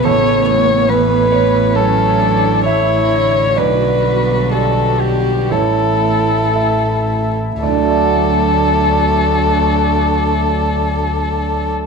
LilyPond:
<<
  \new Staff \with { instrumentName = "Violin" } { \time 4/4 \key d \major \tempo 4 = 59 cis''8 cis''8 b'4 a'4 cis''4 | b'4 a'8 g'8 a'4.~ a'16 r16 | a'1 | }
  \new Staff \with { instrumentName = "Grand piano" } { \time 4/4 \key d \major a'4~ a'16 b'16 cis''16 b'16 a'4 e''4 | d''2 cis''4 r4 | <d, d a fis' d'' fis''>1 | }
  \new Staff \with { instrumentName = "Grand piano" } { \clef bass \time 4/4 \key d \major a,,4 e,2. | b,,4 <g' d''>4 a,,4 <e' e''>4 | r1 | }
  \new Staff \with { instrumentName = "Analog synth pad" } { \time 4/4 \key d \major <a e' cis''>1 | <g b d''>2 <a e' e''>2 | <a fis' d''>1 | }
  \new Staff \with { instrumentName = "Viola" } { \time 4/4 \key d \major b2 cis'8 d'8 e'4 | fis'2 e'4.~ e'16 r16 | d'1 | }
  \new Staff \with { instrumentName = "Cello" } { \clef bass \time 4/4 \key d \major cis4 e4 fis4 e8 d8~ | d2 e4.~ e16 r16 | fis1 | }
  \new Staff \with { instrumentName = "Double bass" } { \clef bass \time 4/4 \key d \major a,,1 | b,,2 a,,2 | d,1 | }
>>